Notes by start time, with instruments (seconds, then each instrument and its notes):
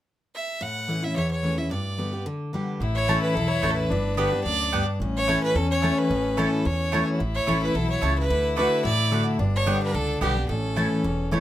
0.35 fiddle E5
0.61 steel-string acoustic guitar A2, fiddle F#5
0.88 steel-string acoustic guitar E3 A3 C#4 E4
1.03 steel-string acoustic guitar C#4 E4, fiddle E5
1.16 steel-string acoustic guitar E2, fiddle C#5
1.31 fiddle C#5
1.43 steel-string acoustic guitar E3 A3 C#4 E4
1.58 steel-string acoustic guitar C#4 E4, fiddle E5
1.71 steel-string acoustic guitar G2, fiddle D5
1.98 steel-string acoustic guitar D3 G3 B3 G4
2.13 steel-string acoustic guitar B3 G4
2.26 steel-string acoustic guitar D3
2.53 steel-string acoustic guitar D3 G3 B3 G4
2.80 upright bass A1, steel-string acoustic guitar A2, fiddle E4
2.95 fiddle C#5
3.08 steel-string acoustic guitar E3 A3 C#4 E4, mandolin A3 E4 C#5 A5
3.22 fiddle B4
3.35 upright bass B1, steel-string acoustic guitar E2, fiddle A4
3.48 fiddle C#5
3.62 upright bass A1, steel-string acoustic guitar E3 A3 C#4 E4, mandolin A3 E4 C#5 A5
3.71 fiddle A4
3.75 fiddle B4
3.90 upright bass G1, steel-string acoustic guitar G2, fiddle D4
4.16 steel-string acoustic guitar D3 G3 B3 G4, mandolin B3 G4 D5 G5, fiddle B4
4.32 steel-string acoustic guitar B3 G4
4.44 upright bass D2, steel-string acoustic guitar F#2, fiddle D5
4.72 steel-string acoustic guitar G2, mandolin B3 G4 D5 G5
5.00 upright bass A1, steel-string acoustic guitar A2, fiddle C#4
5.17 fiddle C#5
5.27 steel-string acoustic guitar E3 A3 C#4 E4, mandolin A3 E4 C#5 A5
5.43 fiddle B4
5.55 upright bass E2, steel-string acoustic guitar E2, fiddle A4
5.71 fiddle C#5
5.82 steel-string acoustic guitar E3 A3 C#4 E4, mandolin A3 E4 C#5 A5
5.98 fiddle B4
6.10 upright bass A1, steel-string acoustic guitar A2
6.37 steel-string acoustic guitar E3 A3 C#4 E4, mandolin A3 E4 C#5 A5, fiddle A4
6.65 steel-string acoustic guitar E2, upright bass E2, fiddle C#5
6.92 steel-string acoustic guitar E3 A3 C#4 E4, mandolin A3 E4 C#5 A5
7.13 fiddle F#4
7.19 upright bass A1, steel-string acoustic guitar A2, fiddle E4
7.35 fiddle C#5
7.47 upright bass A1, steel-string acoustic guitar E3 A3 C#4 E4, mandolin A3 E4 C#5 A5
7.63 fiddle B4
7.75 upright bass B1, steel-string acoustic guitar B2, fiddle A4
7.90 fiddle C#5
8.01 upright bass C#2, steel-string acoustic guitar C#3, mandolin A3 E4 C#5 A5
8.19 fiddle B4
8.29 upright bass D2, steel-string acoustic guitar D3, fiddle E4
8.56 steel-string acoustic guitar D3 A3 D4 F#4, mandolin A3 F#4 D5 A5, fiddle B4
8.85 upright bass A1, steel-string acoustic guitar A2, fiddle D5
9.11 steel-string acoustic guitar D3 A3 D4 F#4, mandolin A3 F#4 D5 A5
9.39 upright bass G1, steel-string acoustic guitar G2, fiddle D4
9.56 fiddle C#5
9.66 steel-string acoustic guitar D3 G3 B3 G4, mandolin B3 G4 D5 G5
9.83 fiddle B4
9.94 upright bass C#2, steel-string acoustic guitar D3, fiddle A4
10.21 upright bass B1, steel-string acoustic guitar D3 G3 B3 G4, mandolin B3 G4 D5 G5, fiddle G4
10.37 steel-string acoustic guitar B3 G4
10.49 upright bass A1, steel-string acoustic guitar A2, fiddle C#4 A4
10.76 steel-string acoustic guitar E3 A3 C#4 E4, mandolin A3 E4 C#5 A5
11.04 upright bass E1, steel-string acoustic guitar E2
11.31 steel-string acoustic guitar E3 A3 C#4 E4, mandolin A3 E4 C#5 A5